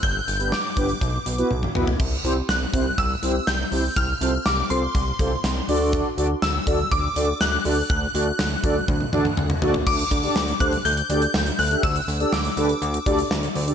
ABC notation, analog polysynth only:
X:1
M:4/4
L:1/16
Q:1/4=122
K:Dmix
V:1 name="Analog polysynth"
z2 [GB] [B,DGB] z2 [B,DGB] z3 [FB] [B,EFB] z2 [B,EFB] z | z2 [CEGc] z3 [CEGc] z3 [CEGc] z3 [CEGc] z | z2 [C=FAc] z3 [CFAc] z3 [CFAc] z3 [D^FAd]2- | [DFAd] z [DFAd] z3 [DFAd] z3 [DFAd] z3 [DFAd] z |
z2 [DFAd] z3 [DFAd] z3 [DFAd] z3 [DFAd] z | z2 [Ad] [DGAd] z2 [DGAc] z3 [DGAd] z3 [Ad] [DGAe] | z2 [Ad] [DGAd] z2 [DGAB] z3 [DGAd] z3 [Ad] [DGAd] |]